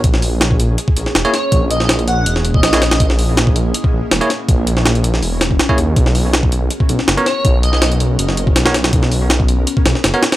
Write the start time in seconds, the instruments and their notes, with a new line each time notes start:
Already playing: ambient pad G#4
0.04 detuned saw bass A#1, ambient pad A#3 C#4 E4, kick, closed hi-hat
0.14 snare
0.22 open hi-hat
0.41 snare, closed hi-hat
0.51 kick
0.60 closed hi-hat
0.78 closed hi-hat
0.88 kick
0.96 detuned saw bass A#1, closed hi-hat
1.06 snare
1.15 detuned saw bass E1, snare, closed hi-hat
1.25 tine electric piano A#3 E4 G#4 C#5, closed hi-hat
1.33 digital synth lead C#5, snare, closed hi-hat
1.52 detuned saw bass A#1, kick, closed hi-hat
1.71 digital synth lead D#5, closed hi-hat
1.80 snare
1.89 snare, closed hi-hat
1.99 closed hi-hat
2.08 digital synth lead F#5, closed hi-hat
2.26 detuned saw bass E1, closed hi-hat
2.36 snare
2.45 closed hi-hat
2.54 digital synth lead D#5, kick
2.63 detuned saw bass A#1, snare, closed hi-hat
2.73 tine electric piano A#3 E4 G#4 C#5, snare, closed hi-hat
2.82 snare, closed hi-hat
2.91 snare, closed hi-hat
3.00 detuned saw bass A#1, kick, closed hi-hat
3.10 snare
3.19 open hi-hat
3.37 snare, closed hi-hat
3.47 kick
3.56 closed hi-hat
3.74 closed hi-hat
3.84 kick
3.93 detuned saw bass A#1
4.11 detuned saw bass E1, snare, closed hi-hat
4.21 tine electric piano A#3 E4 G#4 C#5, closed hi-hat
4.30 snare, closed hi-hat
4.49 detuned saw bass A#1, kick, closed hi-hat
4.67 closed hi-hat
4.77 snare
4.86 snare, closed hi-hat
4.95 closed hi-hat
5.04 closed hi-hat
5.14 snare
5.22 detuned saw bass E1, open hi-hat
5.41 snare, closed hi-hat
5.51 kick
5.59 snare, closed hi-hat
5.69 tine electric piano A#3 E4 G#4 C#5, kick
5.78 detuned saw bass D#2, closed hi-hat
5.96 detuned saw bass B1, ambient pad B3 F#4 A#4, kick, closed hi-hat
6.06 snare
6.15 open hi-hat
6.33 snare, closed hi-hat
6.43 kick
6.52 closed hi-hat
6.71 closed hi-hat
6.80 kick
6.89 detuned saw bass B1, closed hi-hat
6.99 snare
7.07 detuned saw bass F#1, snare, closed hi-hat
7.17 tine electric piano B3 F#4 A#4 C#5, closed hi-hat
7.26 digital synth lead C#5, snare, closed hi-hat
7.45 detuned saw bass B1, kick, closed hi-hat
7.63 digital synth lead D#5, closed hi-hat
7.73 snare
7.82 snare, closed hi-hat
7.92 closed hi-hat
8.00 closed hi-hat
8.19 detuned saw bass F#1, closed hi-hat
8.29 snare
8.37 closed hi-hat
8.47 kick
8.56 detuned saw bass B1, snare, closed hi-hat
8.66 tine electric piano B3 F#4 A#4 C#5, snare, closed hi-hat
8.74 snare, closed hi-hat
8.84 snare, closed hi-hat
8.93 detuned saw bass B1, ambient pad G#4, kick, closed hi-hat
9.03 snare
9.12 open hi-hat
9.30 snare, closed hi-hat
9.40 kick
9.48 closed hi-hat
9.67 closed hi-hat
9.77 kick
9.86 detuned saw bass B1, snare, closed hi-hat
9.95 snare
10.04 detuned saw bass F#1, snare, closed hi-hat
10.14 tine electric piano B3 F#4 A#4 C#5, closed hi-hat
10.23 snare, closed hi-hat
10.32 snare, closed hi-hat